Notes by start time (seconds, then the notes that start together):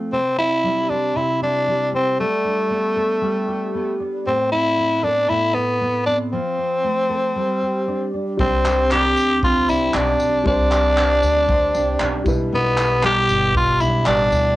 Already playing: F3 A3 C4 F4 A4
0.12 C3 C4
0.38 C4 E4
0.63 G3
0.89 D4 C5
1.15 C3 E4
1.41 D4 E4
1.67 G3
1.93 C4
2.19 G3 A3
2.44 D4
2.70 B3
2.96 A4
3.21 G3
3.48 G4
3.75 B3
4.00 D4
4.26 A2 C4
4.52 C4 E4
4.78 B3
5.03 D4 A4
5.29 A2 E4
5.54 B3 E4
5.81 B3
6.06 C4 D4
6.33 F3 C4
6.59 C4
6.84 A3
7.09 A4
7.36 G3
7.62 G4
7.87 D4
8.14 D4
8.37 C2 G3 C4 D4 C5, kick
8.65 G4, clap, tambourine
8.91 D4 G4, clap
9.17 tambourine
9.43 C4 F4, kick
9.68 C2 D4 E4, tambourine
9.94 B1 D4, clap
10.20 B1 G4, tambourine
10.43 C2 G3 C4 D4 C5, kick
10.71 G4, clap, tambourine
10.97 D4, clap
11.23 D2, tambourine
11.49 C4, kick
11.75 C2 D4, tambourine
12.00 B1 D4, clap
12.24 B1 B2 G3 E4, kick, tambourine
12.28 B4
12.53 B2 B3 B4
12.78 E4, clap, tambourine
13.03 G3 G4, clap
13.29 G1, tambourine
13.55 B2 F4, kick
13.80 B1 D4 E4, tambourine
14.06 A1 G3 D4, clap
14.32 D2 E4, tambourine